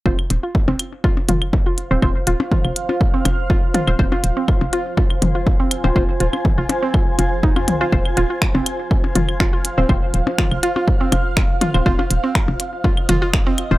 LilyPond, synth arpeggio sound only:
\new Staff \with { instrumentName = "Synth arpeggio sound" } { \time 4/4 \key f \minor \tempo 4 = 122 f'16 r8 f'16 r16 c'16 r8 f'16 r16 f'16 r8 f'16 r16 c'16 | r8 f'16 r16 f'16 r8 f'16 r16 c'16 r8 f'16 r16 f'16 r16 | r16 f'16 r16 c'16 r8 f'16 r16 f'16 r8 f'16 r16 c'16 r8 | f'16 r16 f'16 r8 f'16 r16 c'16 r8 f'16 r16 ees'16 f'16 r16 f'16 |
f'16 r16 f'16 f'16 r16 c'16 r4 f'16 r16 f'16 f'16 r16 c'16 | r4 f'16 r16 f'16 f'16 r16 c'16 r4 f'16 r16 | f'16 f'16 r16 c'16 r4 f'16 r16 f'16 f'16 r16 c'16 r8 | }